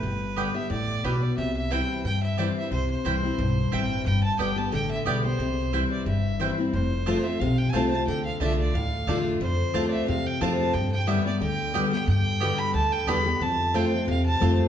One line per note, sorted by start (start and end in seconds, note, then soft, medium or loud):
0.00 0.45 G1 medium
0.00 0.67 G2 medium
0.00 0.57 B4 medium
0.36 0.54 D3 medium
0.36 0.54 G3 medium
0.36 0.46 B3 medium
0.36 0.55 B3 medium
0.36 0.47 G4 medium
0.36 0.53 G4 medium
0.36 0.47 D5 medium
0.36 0.47 G5 loud
0.55 0.71 B3 soft
0.55 0.70 G4 medium
0.55 0.71 E5 medium
0.70 0.99 A1 medium
0.70 1.02 A2 medium
0.70 1.06 D5 medium
1.04 1.32 B1 medium
1.04 1.36 B2 medium
1.04 1.14 B3 medium
1.04 1.14 G4 medium
1.04 1.24 B4 medium
1.04 1.14 D5 medium
1.04 1.14 G5 medium
1.22 1.37 D5 medium
1.37 1.80 C2 medium
1.37 2.02 C3 medium
1.37 1.54 E5 medium
1.57 1.73 E5 medium
1.71 2.03 E3 medium
1.71 2.04 G3 medium
1.71 1.81 C4 medium
1.71 2.04 C4 medium
1.71 1.81 E4 medium
1.71 2.04 E4 medium
1.71 1.81 C5 loud
1.71 2.05 G5 medium
1.71 1.81 G5 medium
2.04 2.47 G2 medium
2.04 2.69 G2 medium
2.04 2.22 G5 medium
2.23 2.40 E5 medium
2.38 2.70 E3 medium
2.38 2.70 G3 medium
2.38 2.48 C4 medium
2.38 2.71 C4 medium
2.38 2.48 E4 medium
2.38 2.71 E4 medium
2.38 2.48 C5 medium
2.38 2.56 D5 medium
2.38 2.48 G5 medium
2.58 2.71 E5 medium
2.71 2.92 C2 medium
2.71 3.36 C3 medium
2.71 2.89 C5 medium
2.90 3.74 C5 medium
3.04 3.33 C2 medium
3.04 3.22 E3 medium
3.04 3.23 G3 medium
3.04 3.15 C4 medium
3.04 3.23 C4 medium
3.04 3.15 E4 medium
3.04 3.22 E4 medium
3.04 3.15 C5 loud
3.04 3.15 G5 loud
3.23 3.39 C4 soft
3.23 3.38 E4 medium
3.38 3.67 B1 medium
3.38 4.03 G2 medium
3.72 4.00 A1 medium
3.72 4.04 E3 medium
3.72 4.05 G3 medium
3.72 3.82 C4 medium
3.72 4.05 C4 medium
3.72 3.82 E4 medium
3.72 4.05 E4 medium
3.72 3.82 C5 medium
3.72 4.05 G5 medium
3.72 3.82 G5 medium
4.05 4.26 G1 medium
4.05 4.70 G2 medium
4.05 4.22 G5 medium
4.23 4.38 A5 medium
4.39 4.67 G1 medium
4.39 4.56 D3 medium
4.39 4.57 G3 medium
4.39 4.49 B3 medium
4.39 4.57 B3 medium
4.39 4.49 G4 medium
4.39 4.55 G4 medium
4.39 4.49 D5 medium
4.39 4.59 G5 medium
4.39 4.49 G5 medium
4.56 4.73 B3 soft
4.56 4.72 G4 medium
4.56 4.72 A5 loud
4.72 5.01 A1 medium
4.72 5.04 D3 medium
4.72 4.90 G5 loud
4.91 5.05 E5 medium
5.05 5.34 B1 medium
5.05 5.23 D3 medium
5.05 5.23 G3 medium
5.05 5.16 B3 medium
5.05 5.23 B3 medium
5.05 5.16 G4 medium
5.05 5.23 G4 medium
5.05 5.16 D5 loud
5.05 5.23 D5 medium
5.05 5.16 G5 loud
5.24 5.40 B3 soft
5.24 5.39 G4 medium
5.24 5.87 C5 medium
5.39 5.81 C2 medium
5.39 6.04 C3 medium
5.73 6.05 E3 medium
5.73 6.05 G3 medium
5.73 5.83 C4 medium
5.73 6.05 C4 medium
5.73 5.83 E4 medium
5.73 6.06 E4 medium
5.73 5.83 C5 medium
5.73 5.83 G5 medium
5.92 6.06 D5 medium
6.06 6.48 G1 medium
6.06 6.70 G2 medium
6.06 6.55 E5 medium
6.40 6.57 E3 medium
6.40 6.57 G3 medium
6.40 6.50 C4 medium
6.40 6.58 C4 medium
6.40 6.50 E4 medium
6.40 6.57 E4 medium
6.40 6.50 C5 medium
6.40 6.50 G5 medium
6.58 6.74 C4 medium
6.58 6.73 E4 medium
6.73 7.15 F1 medium
6.73 7.37 F2 medium
6.73 7.25 C5 medium
7.06 7.24 F3 medium
7.06 7.24 A3 medium
7.06 7.16 C4 medium
7.06 7.25 C4 medium
7.06 7.16 F4 medium
7.06 7.24 F4 loud
7.06 7.17 C5 medium
7.06 7.17 A5 loud
7.24 7.41 C4 soft
7.24 7.40 F4 medium
7.24 7.42 E5 medium
7.40 7.69 B1 medium
7.40 8.05 C3 loud
7.40 7.60 F5 medium
7.58 7.71 G5 medium
7.70 8.02 C2 medium
7.70 7.83 C4 medium
7.70 7.83 F4 medium
7.70 7.83 C5 medium
7.70 7.74 G#5 medium
7.70 7.90 A5 medium
7.70 7.83 A5 loud
7.75 7.91 F3 medium
7.75 7.92 A3 loud
7.75 7.92 C4 loud
7.75 7.91 F4 medium
7.90 8.08 C4 soft
7.90 8.07 F4 medium
7.90 8.05 A5 medium
8.07 8.28 D2 medium
8.07 8.40 D3 medium
8.07 8.24 G5 medium
8.25 8.39 F5 medium
8.40 8.69 C2 medium
8.40 8.73 D3 medium
8.40 8.50 A3 medium
8.40 8.73 A3 medium
8.40 8.73 D4 medium
8.40 8.50 F4 medium
8.40 8.74 F4 medium
8.40 8.51 D5 loud
8.40 8.58 E5 medium
8.40 8.51 A5 loud
8.59 8.75 D5 medium
8.74 9.02 D2 medium
8.74 9.38 A2 medium
8.74 9.25 F5 loud
9.07 9.36 E2 medium
9.07 9.40 D3 medium
9.07 9.17 A3 medium
9.07 9.40 A3 medium
9.07 9.40 D4 loud
9.07 9.17 F4 medium
9.07 9.40 F4 loud
9.07 9.18 D5 loud
9.07 9.18 A5 medium
9.40 9.61 F2 medium
9.40 10.05 F2 medium
9.40 9.90 C5 loud
9.74 10.03 D2 medium
9.74 10.06 F3 medium
9.74 10.06 A3 medium
9.74 9.84 C4 medium
9.74 10.06 C4 medium
9.74 9.84 F4 loud
9.74 10.07 F4 medium
9.74 9.84 C5 loud
9.74 9.84 A5 loud
9.88 9.93 D5 medium
9.88 10.07 E5 loud
10.08 10.36 E2 medium
10.08 10.72 C3 medium
10.08 10.28 F5 loud
10.26 10.43 G5 loud
10.41 10.69 F2 medium
10.41 10.73 F3 loud
10.41 10.73 A3 loud
10.41 10.51 C4 medium
10.41 10.73 C4 medium
10.41 10.51 F4 medium
10.41 10.74 F4 loud
10.41 10.51 C5 loud
10.41 10.58 A5 medium
10.41 10.51 A5 loud
10.58 10.75 A5 loud
10.74 11.38 G2 medium
10.74 11.17 G2 medium
10.74 10.91 G5 medium
10.92 11.09 G5 medium
11.06 11.24 D3 medium
11.06 11.25 G3 medium
11.06 11.17 B3 medium
11.06 11.25 B3 medium
11.06 11.17 G4 medium
11.06 11.24 G4 loud
11.06 11.18 D5 medium
11.06 11.25 E5 medium
11.06 11.18 G5 loud
11.26 11.41 B3 soft
11.26 11.41 G4 medium
11.26 11.40 D5 medium
11.41 11.83 D2 medium
11.41 11.72 D3 medium
11.41 11.89 G5 loud
11.74 11.91 D3 loud
11.74 11.92 G3 medium
11.74 11.84 B3 medium
11.74 11.92 B3 medium
11.74 11.84 G4 medium
11.74 11.90 G4 medium
11.74 11.84 D5 medium
11.74 11.84 G5 loud
11.91 12.08 B3 medium
11.91 12.07 G4 medium
11.91 12.07 G5 medium
12.07 12.50 G2 loud
12.07 12.71 G2 medium
12.07 12.60 G5 loud
12.40 12.73 D3 medium
12.40 12.73 G3 medium
12.40 12.50 B3 medium
12.40 12.73 B3 medium
12.40 12.51 G4 medium
12.40 12.74 G4 medium
12.40 12.51 D5 loud
12.40 12.51 G5 loud
12.59 12.74 B5 loud
12.74 13.03 D2 medium
12.74 13.07 D3 medium
12.74 12.94 A5 loud
12.93 13.10 G5 loud
13.07 13.36 E2 medium
13.07 13.25 D3 medium
13.07 13.25 G3 loud
13.07 13.17 B3 medium
13.07 13.26 B3 medium
13.07 13.17 G4 loud
13.07 13.25 G4 loud
13.07 13.18 D5 medium
13.07 13.18 G5 medium
13.07 13.44 B5 loud
13.26 13.41 B3 medium
13.26 13.41 G4 medium
13.40 13.83 F2 medium
13.40 14.05 F2 medium
13.40 13.77 A5 loud
13.74 13.91 F3 medium
13.74 13.92 A3 medium
13.74 13.84 C4 medium
13.74 13.92 C4 medium
13.74 13.84 F4 medium
13.74 13.91 F4 medium
13.74 13.84 C5 medium
13.74 14.09 G5 loud
13.74 13.85 A5 loud
13.92 14.08 C4 soft
13.92 14.07 F4 medium
14.07 14.36 E2 medium
14.07 14.68 C3 medium
14.07 14.25 F5 medium
14.26 14.57 A5 loud
14.40 14.68 F2 medium
14.40 14.68 F3 loud
14.40 14.68 A3 medium
14.40 14.68 C4 medium
14.40 14.51 C4 medium
14.40 14.51 F4 medium
14.40 14.68 F4 loud
14.40 14.51 C5 loud
14.40 14.51 A5 medium